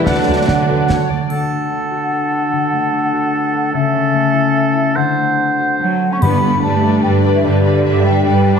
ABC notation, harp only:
X:1
M:3/4
L:1/16
Q:1/4=147
K:D
V:1 name="Harp"
D, D2 A d f a f d A F D | D,2 A,2 D2 F2 A2 F2 | D,2 A,2 D2 F2 A2 F2 | C,2 C2 A,2 E2 A2 E2 |
D,2 A,2 =C2 F2 A2 F2 | [K:G] G,,2 D,2 D2 G2 B2 D2 | G,,2 D,2 D2 G2 B2 D2 |]